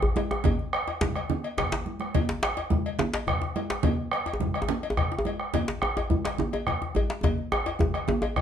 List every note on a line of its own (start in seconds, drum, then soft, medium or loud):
0.02 bombo rim soft
0.02 djembe slap medium
0.02 djembe tone medium
0.02 djembe bass medium
0.16 bombo rim soft
0.16 cowbell soft
0.16 high conga medium
0.16 djembe tone medium
0.31 bombo rim medium
0.31 djembe tone medium
0.44 bombo low medium
0.44 cowbell medium
0.44 djembe slap soft
0.44 djembe tone medium
0.44 low conga medium
0.44 djembe bass medium
0.59 high conga soft
0.73 bombo rim loud
0.73 cowbell soft
0.88 cowbell soft
0.88 djembe slap medium
0.88 djembe tone medium
1.01 bombo rim soft
1.01 bombo low medium
1.01 djembe slap loud
1.01 high conga medium
1.16 bombo rim medium
1.16 cowbell soft
1.16 djembe slap soft
1.16 high conga soft
1.30 djembe slap soft
1.30 djembe tone medium
1.30 low conga medium
1.44 bombo rim soft
1.44 cowbell soft
1.58 bombo rim medium
1.58 bombo low medium
1.58 cowbell soft
1.58 djembe slap soft
1.58 djembe slap medium
1.58 djembe bass medium
1.58 low conga soft
1.72 djembe slap loud
1.72 djembe slap medium
1.72 djembe tone medium
1.72 low conga soft
1.86 high conga medium
2.00 bombo rim medium
2.00 high conga medium
2.15 bombo low medium
2.15 cowbell medium
2.15 djembe tone medium
2.15 low conga medium
2.15 djembe bass medium
2.29 djembe slap medium
2.43 bombo rim medium
2.43 cowbell soft
2.43 djembe slap loud
2.43 high conga soft
2.57 cowbell medium
2.57 djembe slap medium
2.57 djembe tone medium
2.70 bombo low medium
2.70 high conga medium
2.70 djembe bass medium
2.86 cowbell soft
2.86 djembe slap soft
2.99 djembe slap medium
2.99 high conga soft
2.99 djembe tone medium
2.99 low conga medium
3.13 cowbell soft
3.13 djembe slap medium
3.13 high conga soft
3.27 bombo rim medium
3.27 bombo low medium
3.27 cowbell soft
3.27 djembe slap soft
3.27 djembe bass medium
3.42 bombo rim soft
3.42 djembe slap medium
3.42 djembe tone medium
3.56 bombo rim soft
3.56 cowbell soft
3.56 high conga medium
3.70 bombo rim medium
3.70 djembe slap medium
3.83 bombo low loud
3.83 cowbell medium
3.83 djembe tone medium
3.83 low conga medium
3.83 djembe bass medium
4.11 bombo rim loud
4.11 cowbell soft
4.11 high conga soft
4.26 cowbell soft
4.26 djembe slap medium
4.26 djembe tone medium
4.33 djembe tone medium
4.40 bombo low medium
4.40 high conga medium
4.40 djembe bass medium
4.54 bombo rim medium
4.54 cowbell soft
4.62 djembe tone medium
4.68 high conga soft
4.68 djembe tone medium
4.68 low conga medium
4.83 cowbell soft
4.83 high conga soft
4.90 djembe tone medium
4.97 bombo rim medium
4.97 bombo low medium
4.97 cowbell soft
4.97 djembe slap soft
4.97 djembe bass medium
5.11 bombo rim soft
5.11 djembe slap medium
5.11 djembe tone medium
5.19 djembe tone medium
5.25 bombo rim soft
5.25 cowbell soft
5.25 high conga medium
5.40 bombo rim medium
5.54 bombo low medium
5.54 cowbell medium
5.54 djembe tone medium
5.54 low conga medium
5.54 djembe bass medium
5.68 djembe slap medium
5.82 bombo rim medium
5.82 high conga soft
5.82 djembe tone medium
5.97 cowbell soft
5.97 djembe slap medium
5.97 djembe tone medium
6.10 bombo low medium
6.10 high conga medium
6.10 djembe bass medium
6.25 bombo rim medium
6.25 cowbell soft
6.25 djembe slap medium
6.38 high conga soft
6.38 djembe tone medium
6.38 low conga medium
6.53 cowbell medium
6.53 djembe tone medium
6.67 bombo rim medium
6.67 bombo low medium
6.67 cowbell soft
6.67 djembe slap soft
6.67 djembe bass medium
6.81 bombo rim soft
6.81 djembe slap medium
6.81 djembe tone medium
6.95 cowbell medium
6.95 high conga medium
6.95 djembe bass medium
7.10 djembe slap medium
7.23 bombo low medium
7.23 cowbell medium
7.23 high conga soft
7.23 djembe tone medium
7.23 djembe tone loud
7.23 low conga medium
7.23 djembe bass medium
7.38 djembe slap soft
7.52 bombo rim medium
7.52 cowbell soft
7.52 djembe slap soft
7.52 high conga soft
7.52 djembe tone loud
7.66 cowbell medium
7.66 djembe slap medium
7.66 djembe tone medium
7.79 bombo rim soft
7.79 bombo low medium
7.79 high conga medium
7.79 djembe tone loud
7.79 djembe bass medium
7.94 bombo rim medium
7.94 cowbell medium
8.08 djembe tone medium
8.08 djembe tone loud
8.08 low conga medium
8.22 cowbell soft
8.22 djembe tone medium
8.22 high conga soft
8.36 bombo rim medium
8.36 bombo low medium
8.36 cowbell soft
8.36 djembe slap soft
8.36 high conga soft
8.36 djembe bass medium